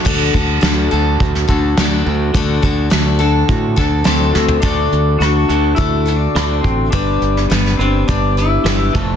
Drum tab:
CC |x---------------|----------------|----------------|----------------|
HH |----x---x---x---|x---x---x---x---|x-x-x-x-x-x-x-x-|x-x-x-x-x-x-x-x-|
SD |----o----o--o---|----o-----o-o-o-|----r-------r---|---ooo------o---|
FT |----------------|---------------o|----------------|----------------|
BD |o-o-----o-o-----|o-o-----o-o-----|o-------o-----o-|o-------o-----o-|